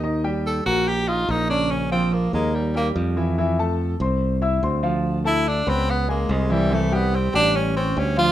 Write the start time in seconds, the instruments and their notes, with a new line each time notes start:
Already playing: fingered electric bass D#2
0.03 grand piano D#3 D#4 D#5
0.24 grand piano G3 G4 G5
0.46 tenor saxophone A4
0.66 fingered electric bass A#1, grand piano A#3 A#4 A#5, tenor saxophone F#4
0.88 tenor saxophone G4
1.07 grand piano D#4 D#5 D#6, tenor saxophone F4
1.29 fingered electric bass A#1, grand piano A#3 A#4 A#5, tenor saxophone D#4
1.50 grand piano C#3 C#4 C#5, tenor saxophone D4
1.71 tenor saxophone C#4
1.91 grand piano F3 F4 F5, tenor saxophone C4
2.13 tenor saxophone A#3
2.33 fingered electric bass D#2, tenor saxophone G#3, grand piano A#3 A#4 A#5
2.55 tenor saxophone G3
2.75 grand piano G3 G4 G5, tenor saxophone A#3
2.96 fingered electric bass F2
3.17 grand piano E3 E4 E5
3.38 grand piano E3 E4 E5
3.59 grand piano A3 A4 A5
4.00 fingered electric bass C2, grand piano C4 C5 C6
4.42 grand piano E4 E5 E6
4.63 fingered electric bass D2, grand piano C4 C5 C6
4.83 grand piano F3 F4 F5
5.24 grand piano A3 A4 A5, tenor saxophone E4
5.48 tenor saxophone D4
5.67 fingered electric bass C#2, grand piano B3 B4 B5, tenor saxophone C4
5.90 tenor saxophone B3
6.08 grand piano G#3 G#4 G#5, tenor saxophone A#3
6.29 fingered electric bass C2, tenor saxophone G#3
6.50 grand piano E3 E4 E5, tenor saxophone G3
6.71 grand piano E3 E4 E5, tenor saxophone A3
6.92 grand piano G3 G4 G5, tenor saxophone B3
7.16 tenor saxophone C4
7.34 fingered electric bass A1, grand piano G3 G4 G5, tenor saxophone D4
7.56 tenor saxophone C#4
7.76 tenor saxophone C4, grand piano C#4 C#5 C#6
7.97 fingered electric bass D2, grand piano G3 G4 G5, tenor saxophone C#4
8.17 grand piano F3 F4 F5, tenor saxophone F4